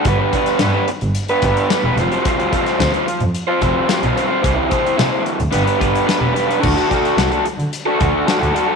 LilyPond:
<<
  \new Staff \with { instrumentName = "Overdriven electric guitar" } { \time 4/4 \key g \mixolydian \tempo 4 = 110 <g b d' b'>16 <b d' b'>16 <g b d' b'>8 <g b d' b'>16 <b d' b'>8. r16 <b d' b'>16 <g b d' b'>8 <g b d' b'>16 <b d' b'>16 <f g c' f' c''>16 <c' f' c''>16 | <f g c' f' c''>16 <c' f' c''>16 <g c' f' c''>8 <f g c' f' c''>16 <c' f' c''>8. r16 <c' f' c''>16 <g c' f' c''>8 <f g c' f' c''>16 <c' f' c''>16 <g c' f' c''>16 <c' f' c''>16 | <c e g c' e' c''>16 <g c' e' c''>16 <g c' e' c''>8 <c e g c' e' c''>16 <g c' e' c''>8. <g b d' b'>16 <b d' b'>16 <g b d' b'>8 <g b d' b'>16 <b d' b'>16 <g b d' b'>16 <b d' b'>16 | <d d' fis' a'>16 <d' fis' a'>16 <d d' fis' a'>8 <d d' fis' a'>16 <d' fis' a'>8. r16 <d' fis' a'>16 <d d' fis' a'>8 <d d' fis' a'>16 <d' fis' a'>16 <d d' fis' a'>16 <d' fis' a'>16 | }
  \new Staff \with { instrumentName = "Double bass" } { \clef bass \time 4/4 \key g \mixolydian g,,8 r8 g,8 r16 g,,8. g,,8. e,,16 f,,8~ | f,,4 d,8. f,8 r16 f,,8 r16 b,,8. | c,8 r8 c8 r16 d,16 g,,8 g,,8. e,,8 r16 | d,4 c,8. d8 r16 d,8 r16 d,8. | }
  \new DrumStaff \with { instrumentName = "Drums" } \drummode { \time 4/4 <hh bd>8 <hh bd>16 <hh sn>16 <hh sn>8 hh16 hh16 hh16 hh16 <hh bd>16 hh16 <hh sn>8 hh16 hh16 | <hh bd>16 hh16 <hh bd>16 <hh sn>16 <hh sn>16 hh16 hh16 hh16 hh8 <hh bd>8 <hh sn>16 hh16 hh8 | <hh bd>8 <hh bd>16 hh16 <hh sn>8 hh16 hh16 hh16 hh16 <hh bd>16 hh16 <hh sn>8 hh16 hh16 | <cymc bd>16 hh16 <hh bd>16 hh16 <hh sn>16 hh16 hh16 hh16 hh8 <hh bd>8 <hh sn>16 hh16 hh8 | }
>>